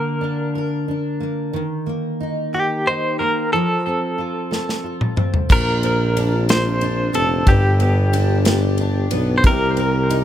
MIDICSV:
0, 0, Header, 1, 5, 480
1, 0, Start_track
1, 0, Key_signature, -2, "major"
1, 0, Tempo, 658617
1, 1126, Time_signature, 6, 3, 24, 8
1, 7464, End_track
2, 0, Start_track
2, 0, Title_t, "Clean electric guitar"
2, 0, Program_c, 0, 27
2, 0, Note_on_c, 0, 70, 67
2, 616, Note_off_c, 0, 70, 0
2, 1855, Note_on_c, 0, 67, 67
2, 2094, Note_on_c, 0, 72, 75
2, 2098, Note_off_c, 0, 67, 0
2, 2314, Note_off_c, 0, 72, 0
2, 2326, Note_on_c, 0, 70, 68
2, 2569, Note_off_c, 0, 70, 0
2, 2572, Note_on_c, 0, 69, 62
2, 3740, Note_off_c, 0, 69, 0
2, 4026, Note_on_c, 0, 70, 85
2, 4706, Note_off_c, 0, 70, 0
2, 4740, Note_on_c, 0, 72, 92
2, 5209, Note_off_c, 0, 72, 0
2, 5212, Note_on_c, 0, 69, 82
2, 5453, Note_on_c, 0, 67, 81
2, 5456, Note_off_c, 0, 69, 0
2, 6618, Note_off_c, 0, 67, 0
2, 6833, Note_on_c, 0, 72, 61
2, 6883, Note_off_c, 0, 72, 0
2, 6899, Note_on_c, 0, 70, 82
2, 7464, Note_off_c, 0, 70, 0
2, 7464, End_track
3, 0, Start_track
3, 0, Title_t, "Steel-string acoustic guitar"
3, 0, Program_c, 1, 25
3, 0, Note_on_c, 1, 50, 64
3, 0, Note_on_c, 1, 58, 47
3, 153, Note_on_c, 1, 62, 43
3, 403, Note_on_c, 1, 70, 51
3, 634, Note_off_c, 1, 62, 0
3, 642, Note_on_c, 1, 62, 45
3, 874, Note_off_c, 1, 58, 0
3, 877, Note_on_c, 1, 58, 43
3, 1115, Note_off_c, 1, 50, 0
3, 1118, Note_on_c, 1, 51, 63
3, 1170, Note_off_c, 1, 58, 0
3, 1173, Note_off_c, 1, 62, 0
3, 1173, Note_off_c, 1, 70, 0
3, 1358, Note_on_c, 1, 58, 48
3, 1607, Note_on_c, 1, 63, 44
3, 1848, Note_on_c, 1, 67, 52
3, 2081, Note_off_c, 1, 63, 0
3, 2090, Note_on_c, 1, 63, 44
3, 2323, Note_off_c, 1, 58, 0
3, 2331, Note_on_c, 1, 58, 44
3, 2563, Note_off_c, 1, 51, 0
3, 2575, Note_on_c, 1, 53, 63
3, 2616, Note_off_c, 1, 67, 0
3, 2617, Note_off_c, 1, 58, 0
3, 2617, Note_off_c, 1, 63, 0
3, 2815, Note_on_c, 1, 60, 44
3, 3047, Note_on_c, 1, 65, 43
3, 3286, Note_on_c, 1, 69, 47
3, 3524, Note_off_c, 1, 65, 0
3, 3527, Note_on_c, 1, 65, 44
3, 3760, Note_off_c, 1, 60, 0
3, 3763, Note_on_c, 1, 60, 40
3, 4002, Note_on_c, 1, 46, 80
3, 4004, Note_off_c, 1, 69, 0
3, 4007, Note_on_c, 1, 70, 67
3, 4053, Note_off_c, 1, 60, 0
3, 4251, Note_on_c, 1, 60, 58
3, 4491, Note_off_c, 1, 65, 0
3, 4494, Note_on_c, 1, 62, 52
3, 4725, Note_off_c, 1, 70, 0
3, 4968, Note_off_c, 1, 62, 0
3, 4971, Note_on_c, 1, 62, 54
3, 5126, Note_off_c, 1, 53, 0
3, 5189, Note_off_c, 1, 60, 0
3, 5197, Note_on_c, 1, 60, 55
3, 5443, Note_off_c, 1, 46, 0
3, 5448, Note_on_c, 1, 43, 83
3, 5453, Note_on_c, 1, 67, 64
3, 5489, Note_off_c, 1, 60, 0
3, 5496, Note_off_c, 1, 62, 0
3, 5683, Note_on_c, 1, 59, 59
3, 5923, Note_on_c, 1, 62, 56
3, 6163, Note_off_c, 1, 67, 0
3, 6166, Note_on_c, 1, 67, 67
3, 6398, Note_off_c, 1, 62, 0
3, 6406, Note_on_c, 1, 62, 56
3, 6632, Note_off_c, 1, 59, 0
3, 6640, Note_on_c, 1, 59, 53
3, 6880, Note_off_c, 1, 67, 0
3, 6884, Note_off_c, 1, 43, 0
3, 6884, Note_on_c, 1, 48, 84
3, 6889, Note_on_c, 1, 67, 70
3, 6929, Note_off_c, 1, 59, 0
3, 6932, Note_off_c, 1, 62, 0
3, 7118, Note_on_c, 1, 60, 59
3, 7360, Note_on_c, 1, 63, 57
3, 7464, Note_off_c, 1, 48, 0
3, 7464, Note_off_c, 1, 60, 0
3, 7464, Note_off_c, 1, 63, 0
3, 7464, Note_off_c, 1, 67, 0
3, 7464, End_track
4, 0, Start_track
4, 0, Title_t, "Tuba"
4, 0, Program_c, 2, 58
4, 4007, Note_on_c, 2, 34, 100
4, 5176, Note_off_c, 2, 34, 0
4, 5206, Note_on_c, 2, 29, 82
4, 5431, Note_off_c, 2, 29, 0
4, 5439, Note_on_c, 2, 31, 104
4, 6611, Note_off_c, 2, 31, 0
4, 6644, Note_on_c, 2, 35, 91
4, 6868, Note_off_c, 2, 35, 0
4, 6879, Note_on_c, 2, 36, 103
4, 7464, Note_off_c, 2, 36, 0
4, 7464, End_track
5, 0, Start_track
5, 0, Title_t, "Drums"
5, 3297, Note_on_c, 9, 38, 41
5, 3370, Note_off_c, 9, 38, 0
5, 3420, Note_on_c, 9, 38, 42
5, 3493, Note_off_c, 9, 38, 0
5, 3651, Note_on_c, 9, 47, 52
5, 3724, Note_off_c, 9, 47, 0
5, 3770, Note_on_c, 9, 45, 72
5, 3843, Note_off_c, 9, 45, 0
5, 3889, Note_on_c, 9, 43, 64
5, 3962, Note_off_c, 9, 43, 0
5, 4008, Note_on_c, 9, 36, 103
5, 4011, Note_on_c, 9, 49, 84
5, 4081, Note_off_c, 9, 36, 0
5, 4083, Note_off_c, 9, 49, 0
5, 4249, Note_on_c, 9, 51, 37
5, 4322, Note_off_c, 9, 51, 0
5, 4494, Note_on_c, 9, 51, 51
5, 4567, Note_off_c, 9, 51, 0
5, 4730, Note_on_c, 9, 51, 64
5, 4738, Note_on_c, 9, 38, 99
5, 4802, Note_off_c, 9, 51, 0
5, 4811, Note_off_c, 9, 38, 0
5, 4965, Note_on_c, 9, 51, 36
5, 5037, Note_off_c, 9, 51, 0
5, 5206, Note_on_c, 9, 51, 54
5, 5278, Note_off_c, 9, 51, 0
5, 5442, Note_on_c, 9, 51, 54
5, 5443, Note_on_c, 9, 36, 101
5, 5515, Note_off_c, 9, 51, 0
5, 5516, Note_off_c, 9, 36, 0
5, 5683, Note_on_c, 9, 51, 37
5, 5756, Note_off_c, 9, 51, 0
5, 5928, Note_on_c, 9, 51, 53
5, 6001, Note_off_c, 9, 51, 0
5, 6160, Note_on_c, 9, 51, 63
5, 6168, Note_on_c, 9, 38, 105
5, 6232, Note_off_c, 9, 51, 0
5, 6241, Note_off_c, 9, 38, 0
5, 6396, Note_on_c, 9, 51, 35
5, 6469, Note_off_c, 9, 51, 0
5, 6637, Note_on_c, 9, 51, 56
5, 6710, Note_off_c, 9, 51, 0
5, 6879, Note_on_c, 9, 51, 56
5, 6880, Note_on_c, 9, 36, 96
5, 6952, Note_off_c, 9, 51, 0
5, 6953, Note_off_c, 9, 36, 0
5, 7118, Note_on_c, 9, 51, 36
5, 7191, Note_off_c, 9, 51, 0
5, 7364, Note_on_c, 9, 51, 55
5, 7437, Note_off_c, 9, 51, 0
5, 7464, End_track
0, 0, End_of_file